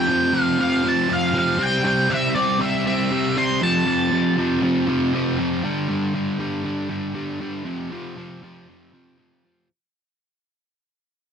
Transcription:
Already playing: lead electric guitar G5
0.08 overdriven electric guitar F2 C3 F3
0.33 overdriven electric guitar F2 C3 F3
0.43 lead electric guitar F5
0.59 overdriven electric guitar F2 C3 F3, lead electric guitar F5
0.84 overdriven electric guitar F2 C3 F3
0.89 lead electric guitar A5
1.09 overdriven electric guitar F2 C3 F3
1.13 lead electric guitar F5
1.33 overdriven electric guitar F2 C3 F3
1.38 lead electric guitar F5
1.58 overdriven electric guitar C3 G3 C4
1.63 lead electric guitar G5
1.84 overdriven electric guitar C3 G3 C4, lead electric guitar G5
2.09 overdriven electric guitar C3 G3 C4, lead electric guitar E5
2.34 overdriven electric guitar C3 G3 C4, lead electric guitar D5
2.59 overdriven electric guitar C3 G3 C4, lead electric guitar E5
2.86 overdriven electric guitar C3 G3 C4, lead electric guitar E5
3.11 overdriven electric guitar C3 G3 C4
3.36 overdriven electric guitar C3 G3 C4, lead electric guitar C6
3.61 overdriven electric guitar F2 C3 F3, lead electric guitar A5
3.86 overdriven electric guitar F2 C3 F3
4.11 overdriven electric guitar F2 C3 F3
4.37 overdriven electric guitar F2 C3 F3
4.62 overdriven electric guitar F2 C3 F3
4.87 overdriven electric guitar F2 C3 F3
5.13 overdriven electric guitar F2 C3 F3
5.38 overdriven electric guitar F2 C3 F3
5.64 overdriven electric guitar G2 D3 G3
5.89 overdriven electric guitar G2 D3 G3
6.14 overdriven electric guitar G2 D3 G3
6.39 overdriven electric guitar G2 D3 G3
6.64 overdriven electric guitar G2 D3 G3
6.90 overdriven electric guitar G2 D3 G3
7.14 overdriven electric guitar G2 D3 G3
7.40 overdriven electric guitar G2 D3 G3
7.64 overdriven electric guitar F2 C3 F3
7.91 overdriven electric guitar F2 C3 F3
8.16 overdriven electric guitar F2 C3 F3
8.42 overdriven electric guitar F2 C3 F3
8.68 overdriven electric guitar F2 C3 F3
8.92 overdriven electric guitar F2 C3 F3
9.17 overdriven electric guitar F2 C3 F3
9.44 overdriven electric guitar F2 C3 F3

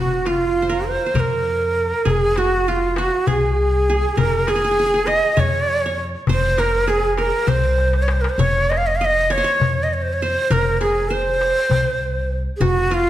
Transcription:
Already playing: upright bass F1, ney F#4, qanun F#4
0.25 qanun F4, ney F4, darbuka tek
0.62 qanun C5
0.69 qanun A#4
0.89 ney C5
1.06 qanun C5
1.14 upright bass F2, qanun A#4, darbuka dum
1.20 ney A#4
1.46 darbuka ka
1.76 darbuka ka
2.05 upright bass F1, qanun G#4, darbuka dum
2.10 ney G#4
2.36 qanun F#4, ney F#4, darbuka tek
2.65 ney F4, qanun F4, darbuka ka
2.96 qanun F#4, ney F#4, darbuka tek
3.27 upright bass C2, ney G#4, qanun G#4, darbuka dum
3.58 darbuka ka
3.88 qanun G#4, darbuka ka
4.16 upright bass F1, ney A#4, qanun A#4, darbuka dum
4.47 qanun G#4, ney G#4, darbuka tek
4.56 qanun G#4
4.64 qanun G#4
4.71 qanun G#4
4.78 qanun G#4, darbuka ka
4.86 qanun G#4
4.94 qanun G#4
5.07 ney D#5, qanun D#5, darbuka tek
5.37 upright bass F2, qanun C#5, ney C#5, darbuka dum
5.68 darbuka ka
5.86 qanun C#5
5.98 darbuka ka
6.27 upright bass F1, qanun C5, ney C5, darbuka dum
6.58 qanun A#4, ney A#4, darbuka tek
6.87 qanun G#4, ney G#4, darbuka ka
7.18 ney A#4, qanun A#4, darbuka tek
7.47 upright bass C2, qanun C5, ney C5, darbuka dum
7.78 darbuka tek
7.93 darbuka ka
8.02 ney C#5
8.08 ney C5, darbuka tek
8.21 ney A#4, darbuka ka
8.29 ney C5
8.38 upright bass F1, qanun C#5, ney C#5, darbuka dum
8.70 ney D#5, darbuka tek
8.77 ney F5
8.87 ney D#5
8.96 ney F5
9.01 qanun D#5, darbuka ka
9.05 ney D#5
9.30 qanun C#5, ney C#5, darbuka tek
9.37 qanun C5
9.44 qanun C#5
9.60 upright bass F2, darbuka dum
9.83 ney D#5
9.92 ney C#5, darbuka ka
10.02 ney C5
10.13 ney C#5
10.21 ney C5, qanun C5, darbuka ka
10.50 upright bass F1, qanun A#4, ney A#4, darbuka dum
10.81 qanun G#4, ney G#4, darbuka tek
11.10 qanun C5, ney C5
11.41 darbuka tek
11.70 upright bass C2, darbuka dum
12.01 darbuka ka
12.31 darbuka ka
12.56 upright bass F1, ney G#4
12.61 qanun F#4, ney F#4, darbuka dum
12.91 qanun F4, ney F4, darbuka tek

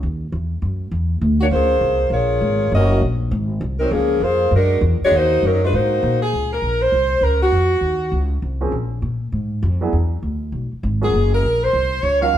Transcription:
0.03 upright bass D#2
0.32 upright bass E2
0.62 upright bass F#2
0.91 upright bass E2
1.21 upright bass D2
1.41 saxophone section A#3 D4 F#4 C#5
1.51 upright bass C#2, saxophone section A#3 F4 G#4 C5
1.81 upright bass C2
2.10 upright bass A#1, saxophone section A#3 F4 G#4 C#5
2.41 upright bass G#1
2.72 upright bass F#1, saxophone section C#4 F#4 A#4 D#5
3.01 upright bass A#1
3.31 upright bass G#1
3.61 upright bass C2
3.80 saxophone section F#3 C4 D#4 A#4
3.91 upright bass C#2, saxophone section F3 A#3 C#4 G#4
4.20 upright bass F2, saxophone section A#3 F4 G#4 C5
4.51 upright bass F#2
4.56 saxophone section G#3 D4 F#4 A#4
4.81 upright bass E2
5.01 saxophone section G#3 D4 C#5, muted upright bass stroke
5.06 saxophone section F#4
5.11 upright bass D#2
5.16 saxophone section A#3 D#4 F#4 C5
5.43 upright bass F#2, saxophone section F#3 C#4 D#4 A#4
5.64 saxophone section G#3 D4 F4 B4
5.73 upright bass G#2, saxophone section A#3 D#4 F#4 C5
6.03 upright bass A#2
6.23 saxophone section G#4
6.33 upright bass C#2
6.53 saxophone section A#4
6.62 upright bass A#1
6.82 saxophone section C5
6.92 upright bass C2
7.21 upright bass C#2, saxophone section A#4
7.43 saxophone section F#4
7.52 upright bass F2
7.81 upright bass D#2
8.12 upright bass C#2
8.42 upright bass C2
8.61 grand piano F3 A#3 C4 C#4 G#4
8.72 upright bass A#1
9.02 upright bass A#2
9.32 upright bass G#2
9.63 upright bass F2
9.81 grand piano F#3 B3 D4 E4 G#4
9.93 upright bass E2
10.22 upright bass D2
10.52 upright bass B1
10.73 muted upright bass stroke
10.83 upright bass G#1
11.02 grand piano F#3 A#3 C#4 F4 G#4, saxophone section G#4
11.14 upright bass F#1
11.35 saxophone section A#4
11.43 upright bass A#1
11.64 saxophone section C5
11.73 upright bass C2
12.03 upright bass C#2, saxophone section C#5
12.21 grand piano F#3 C#4 D#4 F4 A#4, saxophone section F5
12.33 upright bass D#2

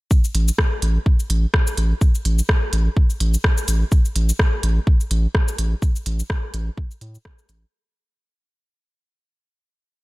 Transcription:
0.11 kick, cabasa
0.24 cabasa
0.35 sub bass A1, closed hi-hat
0.48 cabasa
0.58 kick, cross-stick
0.82 sub bass A1, closed hi-hat
1.06 kick
1.20 cabasa
1.30 sub bass A1, closed hi-hat
1.54 kick, cross-stick
1.67 cabasa
1.77 sub bass A1, closed hi-hat
2.01 kick, cabasa
2.15 cabasa
2.25 sub bass A1, closed hi-hat
2.39 cabasa
2.49 kick, cross-stick
2.73 sub bass A1, closed hi-hat
2.97 kick
3.10 cabasa
3.20 sub bass A1, closed hi-hat
3.34 cabasa
3.44 kick, cross-stick
3.58 cabasa
3.68 sub bass A1, closed hi-hat, cabasa
3.92 kick, cabasa
4.05 cabasa
4.16 sub bass A1, closed hi-hat
4.29 cabasa
4.39 kick, cross-stick
4.63 sub bass A1, closed hi-hat
4.87 kick
5.00 cabasa
5.11 sub bass A1, closed hi-hat
5.35 kick, cross-stick
5.48 cabasa
5.58 sub bass A1, closed hi-hat
5.82 kick, cabasa
5.96 cabasa
6.06 sub bass A1, closed hi-hat
6.20 cabasa
6.30 kick, cross-stick
6.54 sub bass A1, closed hi-hat
6.78 kick
6.91 cabasa
7.01 sub bass A2, closed hi-hat
7.15 cabasa
7.25 kick, cross-stick
7.39 cabasa
7.49 sub bass A1, closed hi-hat, cabasa

